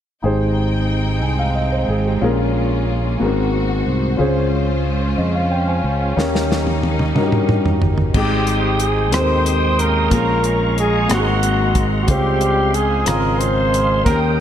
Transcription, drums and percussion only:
6.19 snare soft
6.35 snare soft
6.52 snare soft
6.67 high tom soft
6.83 high tom medium
6.99 mid tom soft
7.16 mid tom medium
7.32 mid tom medium
7.49 mid tom medium
7.66 floor tom medium
7.82 floor tom medium
7.98 floor tom medium
8.14 kick medium
8.14 crash medium
8.47 closed hi-hat soft
8.80 closed hi-hat soft
9.12 cross-stick medium
9.12 closed hi-hat medium
9.46 closed hi-hat soft
9.79 closed hi-hat soft
10.11 kick medium
10.11 closed hi-hat medium
10.44 closed hi-hat soft
10.78 closed hi-hat soft
11.10 cross-stick medium
11.10 closed hi-hat medium
11.43 closed hi-hat soft
11.75 kick medium
11.75 closed hi-hat soft
12.08 kick medium
12.08 closed hi-hat medium
12.41 closed hi-hat soft
12.74 closed hi-hat soft
13.06 cross-stick medium
13.06 closed hi-hat medium
13.41 closed hi-hat soft
13.74 closed hi-hat soft
14.06 kick medium
14.06 closed hi-hat medium

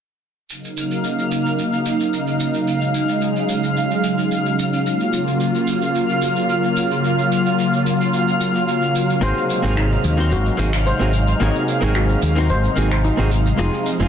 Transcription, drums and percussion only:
0.50 shaker soft
0.65 shaker soft
0.77 shaker medium
0.91 shaker soft
1.04 shaker soft
1.19 shaker soft
1.32 shaker medium
1.46 shaker soft
1.59 shaker soft
1.73 shaker soft
1.86 shaker medium
2.00 shaker soft
2.13 shaker soft
2.27 shaker soft
2.40 shaker medium
2.54 shaker soft
2.68 shaker soft
2.82 shaker soft
2.95 shaker medium
3.09 shaker soft
3.22 shaker soft
3.36 shaker soft
3.49 shaker medium
3.63 shaker soft
3.77 shaker soft
3.91 shaker soft
4.04 shaker medium
4.18 shaker soft
4.32 shaker soft
4.46 shaker soft
4.59 shaker medium
4.73 shaker soft
4.86 shaker soft
5.00 shaker soft
5.13 shaker medium
5.27 shaker soft
5.40 shaker soft
5.55 shaker soft
5.68 shaker medium
5.82 shaker soft
5.95 shaker soft
6.09 shaker soft
6.22 shaker medium
6.36 shaker soft
6.50 shaker soft
6.64 shaker soft
6.77 shaker medium
6.91 shaker soft
7.05 shaker soft
7.19 shaker soft
7.32 shaker medium
7.46 shaker soft
7.59 shaker soft
7.74 shaker soft
7.86 shaker medium
8.01 shaker soft
8.14 shaker soft
8.28 shaker soft
8.41 shaker medium
8.55 shaker soft
8.68 shaker soft
8.82 shaker soft
8.96 shaker medium
9.10 shaker soft
9.23 shaker soft
9.37 shaker soft
9.50 shaker medium
9.64 shaker soft
9.77 finger snap medium
9.77 shaker soft
9.92 shaker soft
10.04 shaker medium
10.19 shaker soft
10.32 shaker soft
10.46 shaker soft
10.59 shaker medium
10.73 finger snap medium
10.73 shaker soft
10.86 shaker soft
11.01 shaker soft
11.13 shaker medium
11.28 shaker soft
11.41 shaker soft
11.55 shaker soft
11.68 shaker medium
11.82 shaker soft
11.95 finger snap medium
11.95 shaker soft
12.09 shaker soft
12.22 shaker medium
12.37 shaker soft
12.50 shaker soft
12.64 shaker soft
12.77 shaker medium
12.91 finger snap medium
12.91 shaker soft
13.04 shaker soft
13.19 shaker soft
13.31 shaker medium
13.46 shaker soft
13.59 shaker soft
13.74 shaker soft
13.86 shaker medium
14.01 shaker soft

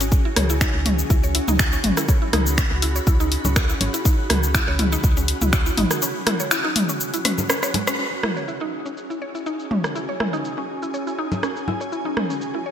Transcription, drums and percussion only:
0.01 open hi-hat soft
0.01 shaker soft
0.12 kick loud
0.12 shaker soft
0.36 cross-stick medium
0.36 open hi-hat medium
0.36 high tom medium
0.50 shaker soft
0.61 finger snap medium
0.61 kick loud
0.61 shaker medium
0.86 open hi-hat loud
0.86 high tom medium
0.99 shaker soft
1.10 kick loud
1.10 shaker medium
1.23 shaker soft
1.35 open hi-hat loud
1.48 high tom medium
1.48 shaker soft
1.59 finger snap medium
1.59 kick loud
1.59 shaker medium
1.73 shaker soft
1.84 open hi-hat loud
1.84 high tom medium
1.97 cross-stick medium
1.97 open hi-hat soft
1.97 shaker soft
2.09 kick loud
2.09 shaker medium
2.33 cross-stick medium
2.33 open hi-hat medium
2.33 high tom medium
2.46 shaker soft
2.58 finger snap medium
2.58 kick loud
2.58 shaker medium
2.82 open hi-hat medium
2.96 shaker soft
3.07 kick loud
3.07 shaker medium
3.20 shaker soft
3.32 open hi-hat medium
3.45 low conga medium
3.45 shaker soft
3.56 finger snap medium
3.56 kick loud
3.56 cross-stick medium
3.56 shaker medium
3.69 shaker soft
3.81 open hi-hat medium
3.81 low conga medium
3.94 open hi-hat soft
3.94 shaker soft
4.05 kick loud
4.05 shaker medium
4.30 cross-stick medium
4.30 open hi-hat medium
4.30 high tom medium
4.43 shaker soft
4.54 finger snap medium
4.54 kick loud
4.54 shaker medium
4.79 open hi-hat medium
4.79 high tom medium
4.92 shaker soft
5.04 kick loud
5.04 shaker medium
5.17 shaker soft
5.28 open hi-hat medium
5.42 high tom medium
5.42 shaker soft
5.53 finger snap medium
5.53 kick loud
5.53 shaker medium
5.66 shaker soft
5.77 open hi-hat medium
5.77 high tom medium
5.91 cross-stick medium
5.91 open hi-hat soft
5.91 shaker soft
6.02 shaker medium
6.27 cross-stick medium
6.27 open hi-hat medium
6.27 high tom medium
6.40 shaker soft
6.51 finger snap loud
6.51 shaker medium
6.76 open hi-hat medium
6.76 high tom medium
6.89 shaker soft
7.00 shaker medium
7.14 open hi-hat soft
7.14 shaker soft
7.25 cross-stick medium
7.25 open hi-hat medium
7.25 high tom soft
7.38 low conga medium
7.38 shaker soft
7.50 cross-stick medium
7.50 shaker medium
7.63 cross-stick medium
7.63 shaker soft
7.74 open hi-hat medium
7.74 low conga medium
7.87 cross-stick medium
7.87 open hi-hat soft
7.87 shaker soft
7.99 shaker medium
8.23 cross-stick medium
8.23 high tom medium
8.37 shaker soft
8.48 shaker medium
8.86 shaker soft
8.97 shaker medium
9.10 shaker soft
9.35 shaker soft
9.46 shaker medium
9.60 shaker soft
9.71 high tom medium
9.84 cross-stick medium
9.84 shaker soft
9.96 shaker soft
10.20 cross-stick medium
10.20 high tom medium
10.33 shaker soft
10.45 shaker medium
10.83 shaker soft
10.94 shaker soft
11.07 shaker soft
11.32 low conga medium
11.32 shaker soft
11.43 cross-stick medium
11.43 shaker soft
11.56 shaker soft
11.68 low conga medium
11.81 shaker soft
11.92 shaker soft
12.17 cross-stick medium
12.17 high tom medium
12.30 shaker soft
12.41 shaker soft

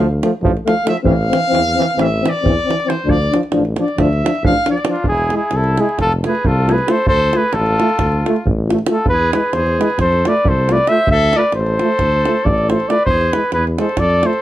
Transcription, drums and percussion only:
0.23 davul high medium
0.45 davul low medium
0.57 davul high soft
0.68 davul high medium
0.87 davul high medium
0.97 davul high soft
1.05 davul low medium
1.33 davul high medium
1.44 davul high soft
1.55 davul high medium
1.68 davul high soft
1.82 davul high medium
1.91 davul high soft
1.99 davul high medium
2.26 davul high medium
2.46 davul low medium
2.59 davul high soft
2.71 davul high medium
2.80 davul high soft
2.90 davul high medium
2.99 davul high soft
3.09 davul low medium
3.22 davul high soft
3.34 davul high medium
3.43 davul high soft
3.52 davul high medium
3.65 davul high soft
3.76 davul high medium
3.88 davul high soft
3.98 davul high medium
3.98 davul low medium
4.13 davul high soft
4.26 davul high medium
4.35 davul high soft
4.45 davul low medium
4.56 davul high soft
4.66 davul high medium
4.78 davul high soft
4.85 davul high medium
4.96 davul high soft
5.04 davul low medium
5.17 davul high soft
5.30 davul high medium
5.51 davul high medium
5.64 davul high soft
5.78 davul high medium
5.89 davul high soft
5.99 davul high medium
5.99 davul low medium
6.12 davul high soft
6.24 davul high medium
6.35 davul high soft
6.45 davul low medium
6.69 davul high medium
6.78 davul high soft
6.88 davul high medium
6.98 davul high soft
7.07 davul low medium
7.20 davul high soft
7.33 davul high medium
7.53 davul high medium
7.66 davul high soft
7.80 davul high medium
7.89 davul high soft
7.99 davul high medium
7.99 davul low medium
8.12 davul high soft
8.26 davul high medium
8.36 davul high soft
8.47 davul low medium
8.70 davul high medium
8.79 davul high soft
8.87 davul high medium
8.98 davul high soft
9.06 davul low medium
9.19 davul high soft
9.33 davul high medium
9.53 davul high medium
9.67 davul high soft
9.81 davul high medium
9.90 davul high soft
9.99 davul high medium
9.99 davul low medium
10.13 davul high soft
10.25 davul high medium
10.37 davul high soft
10.45 davul low medium
10.69 davul high medium
10.77 davul high soft
10.87 davul high medium
10.97 davul high soft
11.07 davul low medium
11.20 davul high soft
11.33 davul high medium
11.43 davul high soft
11.52 davul high medium
11.66 davul high soft
11.79 davul high medium
11.99 davul high medium
11.99 davul low medium
12.12 davul high soft
12.25 davul high medium
12.37 davul high soft
12.46 davul low medium
12.58 davul high soft
12.70 davul high medium
12.80 davul high soft
12.90 davul high medium
12.99 davul high soft
13.06 davul low medium
13.21 davul high soft
13.33 davul high medium
13.52 davul high medium
13.67 davul high soft
13.78 davul high medium
13.89 davul high soft
13.97 davul high medium
13.97 davul low medium
14.10 davul high soft
14.23 davul high medium
14.33 davul high soft

